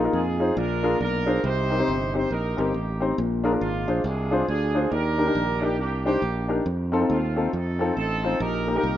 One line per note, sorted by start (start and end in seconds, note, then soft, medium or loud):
0.00 0.36 A#2 medium
0.04 0.19 D#4 medium
0.04 0.19 F4 medium
0.04 0.20 G#4 medium
0.04 0.20 A#4 medium
0.13 0.50 F2 medium
0.13 0.54 D#4 medium
0.13 0.54 F4 medium
0.13 0.54 G#4 medium
0.40 0.52 D#4 medium
0.40 0.52 F4 medium
0.40 0.52 G#4 medium
0.40 0.53 C5 medium
0.56 0.94 A#1 loud
0.56 1.23 A#2 medium
0.56 0.99 D4 medium
0.56 0.99 F4 medium
0.56 0.99 A#4 medium
0.83 0.95 D4 medium
0.83 0.96 F4 medium
0.83 0.96 G#4 medium
0.83 0.96 A#4 medium
1.00 1.37 B1 medium
1.00 1.41 D4 medium
1.00 1.41 F4 medium
1.00 1.41 A#4 medium
1.26 1.39 D4 medium
1.26 1.39 F4 medium
1.26 1.39 G#4 medium
1.26 1.39 C5 medium
1.43 1.81 C2 medium
1.43 2.10 C3 medium
1.43 2.27 D#4 medium
1.43 2.27 G4 medium
1.43 2.14 C5 loud
1.70 1.77 C4 medium
1.70 1.77 D#4 medium
1.70 1.77 G4 medium
1.70 1.77 A#4 medium
1.78 1.93 C4 medium
1.78 1.93 D#4 medium
1.78 1.93 G4 medium
1.78 1.94 C5 medium
1.88 2.25 G1 medium
2.14 2.26 C4 medium
2.14 2.26 D#4 medium
2.14 2.26 G4 medium
2.14 2.27 C5 medium
2.14 2.30 C5 medium
2.31 2.54 A#1 medium
2.31 2.58 D#4 medium
2.31 2.57 G4 medium
2.31 2.58 A#4 medium
2.57 2.72 G1 medium
2.57 3.14 A#3 medium
2.57 2.69 C4 medium
2.57 2.70 D#4 medium
2.57 3.14 D#4 medium
2.57 2.70 G4 medium
2.57 3.02 G4 medium
2.57 2.70 A#4 medium
2.74 3.11 A1 medium
3.00 3.13 C4 medium
3.00 3.13 D#4 medium
3.00 3.13 G4 medium
3.00 3.14 C5 medium
3.18 3.55 A#1 loud
3.18 3.84 A#2 medium
3.44 3.50 D4 medium
3.44 3.50 F4 medium
3.44 3.51 G#4 medium
3.44 3.51 A#4 medium
3.52 3.67 D4 medium
3.52 3.67 F4 medium
3.52 3.67 G#4 medium
3.52 3.68 A#4 medium
3.61 3.84 G#1 medium
3.61 4.45 G#3 medium
3.61 4.04 D4 medium
3.61 4.02 F4 medium
3.88 4.02 A#1 medium
3.88 4.00 D4 medium
3.88 4.00 F4 medium
3.88 4.00 G#4 medium
3.88 4.01 C5 medium
4.04 4.41 C2 loud
4.04 4.47 D4 medium
4.04 4.47 F4 medium
4.04 4.46 G#4 medium
4.31 4.43 D4 medium
4.31 4.44 F4 medium
4.31 4.44 G#4 medium
4.31 4.44 C5 medium
4.48 4.85 D2 medium
4.48 4.89 D4 medium
4.48 4.89 F4 medium
4.48 4.88 G#4 medium
4.74 4.87 D4 medium
4.74 4.87 F4 medium
4.74 4.87 G#4 medium
4.74 4.87 C5 medium
4.91 5.29 D#2 medium
4.91 5.58 D#3 medium
4.91 5.75 D4 medium
4.91 5.60 G4 medium
4.91 5.62 A#4 loud
5.18 5.24 D4 medium
5.18 5.25 D#4 medium
5.18 5.25 G4 medium
5.18 5.25 A#4 medium
5.26 5.41 D4 medium
5.26 5.41 D#4 medium
5.26 5.41 G4 medium
5.26 5.42 A#4 medium
5.35 5.79 A#1 medium
5.61 5.74 D4 medium
5.61 5.74 D#4 medium
5.61 5.77 G4 medium
5.61 5.74 G4 medium
5.61 5.75 A#4 medium
5.78 6.16 C2 loud
5.78 6.05 A#3 medium
5.78 6.05 D4 medium
5.78 6.04 G4 medium
6.05 6.62 A#3 medium
6.05 6.18 D4 medium
6.05 6.62 D4 medium
6.05 6.18 D#4 medium
6.05 6.46 G4 medium
6.05 6.18 G4 medium
6.05 6.18 C5 medium
6.22 6.59 A#1 medium
6.48 6.61 D4 medium
6.48 6.61 D#4 medium
6.48 6.61 G4 medium
6.48 6.62 A#4 medium
6.66 7.03 F2 medium
6.92 6.98 C4 medium
6.92 6.99 D#4 medium
6.92 6.99 F4 medium
6.92 6.99 A4 medium
7.00 7.15 C4 medium
7.00 7.15 D#4 medium
7.00 7.16 F4 medium
7.00 7.16 A4 medium
7.10 7.47 D#2 medium
7.10 7.93 A3 medium
7.10 7.53 C4 medium
7.10 7.50 F4 medium
7.36 7.48 C4 medium
7.36 7.48 D#4 medium
7.36 7.49 F4 medium
7.36 7.49 A4 medium
7.53 7.90 F2 medium
7.53 7.96 C4 medium
7.53 7.96 D#4 medium
7.53 7.95 A4 medium
7.79 7.92 C4 medium
7.79 7.92 D#4 medium
7.79 7.92 F4 medium
7.79 7.92 A4 medium
7.97 8.34 A1 medium
7.97 8.37 C4 medium
7.97 8.37 D#4 medium
7.97 8.37 A4 medium
8.23 8.35 C4 medium
8.23 8.36 D#4 medium
8.23 8.36 F4 medium
8.23 8.36 C5 medium
8.40 8.77 A#1 loud
8.40 8.97 A#2 medium
8.40 8.74 D#4 medium
8.40 8.74 G4 medium
8.40 8.74 A#4 loud
8.67 8.73 A#3 medium
8.67 8.73 D#4 medium
8.67 8.74 G4 medium
8.67 8.74 A#4 medium
8.75 8.90 A#3 medium
8.75 8.97 D#4 medium
8.75 8.90 D#4 medium
8.75 8.97 G4 medium
8.75 8.90 G4 medium
8.75 8.97 A#4 medium
8.75 8.90 A#4 medium
8.83 8.97 C2 medium